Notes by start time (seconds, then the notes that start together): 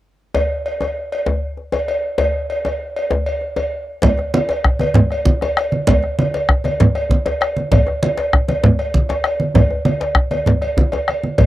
0.34 cowbell, djembe slap, djembe tone, djembe bass
0.66 cowbell
0.81 cowbell, djembe slap, djembe tone
1.12 cowbell
1.26 djembe slap, djembe tone, djembe bass
1.57 djembe slap
1.72 cowbell, djembe slap, djembe tone
1.88 cowbell, djembe slap
2.18 cowbell, djembe slap, djembe tone, djembe bass
2.50 cowbell
2.65 cowbell, djembe slap, djembe tone
2.96 cowbell
3.11 djembe slap, djembe tone, djembe bass
3.26 cowbell
3.41 djembe slap
3.56 cowbell, djembe slap, djembe tone
4.02 bombo low, cowbell, djembe slap, djembe bass, low conga
4.17 bombo rim, djembe tone, high conga
4.34 cowbell, high conga
4.49 cowbell, djembe slap
4.64 bombo rim, bombo low, djembe slap
4.79 bombo rim, cowbell, high conga, djembe tone
4.94 djembe slap, low conga, djembe bass
5.10 bombo rim, cowbell
5.25 bombo low, high conga
5.41 bombo rim, cowbell, djembe slap, djembe tone
5.57 bombo rim, cowbell
5.72 djembe slap, high conga
5.87 bombo low, cowbell, djembe slap, low conga, djembe bass
6.03 bombo rim, high conga
6.19 cowbell, high conga
6.34 cowbell, djembe slap
6.49 bombo rim, bombo low, djembe slap
6.64 bombo rim, cowbell, djembe tone, high conga
6.80 djembe slap, djembe bass, low conga
6.95 bombo rim, cowbell
7.10 bombo low, high conga
7.26 bombo rim, cowbell, djembe slap, djembe tone
7.41 bombo rim, cowbell
7.56 djembe slap, high conga
7.72 bombo low, cowbell, djembe slap, low conga, djembe bass
7.87 bombo rim, djembe tone, high conga
8.03 cowbell, high conga
8.17 cowbell, djembe slap
8.33 bombo rim, bombo low, djembe slap
8.48 bombo rim, cowbell, djembe tone, high conga
8.63 djembe slap, djembe bass, low conga
8.79 bombo rim, cowbell
8.94 bombo low, high conga
9.09 bombo rim, cowbell, djembe slap, djembe tone
9.24 bombo rim, cowbell
9.40 djembe slap, high conga
9.54 bombo low, cowbell, djembe slap, low conga, djembe bass
9.71 djembe tone
9.85 bombo rim, cowbell, djembe slap, high conga
10.01 cowbell, djembe slap
10.15 bombo rim, bombo low, high conga
10.31 cowbell, high conga, djembe tone
10.46 djembe slap, high conga, low conga, djembe bass
10.61 bombo rim, cowbell, high conga
10.77 bombo low, djembe slap, high conga
10.92 bombo rim, cowbell, djembe slap, djembe tone
11.08 bombo rim, cowbell, high conga
11.23 bombo rim, djembe slap, high conga
11.38 bombo low, cowbell, djembe slap, low conga, djembe bass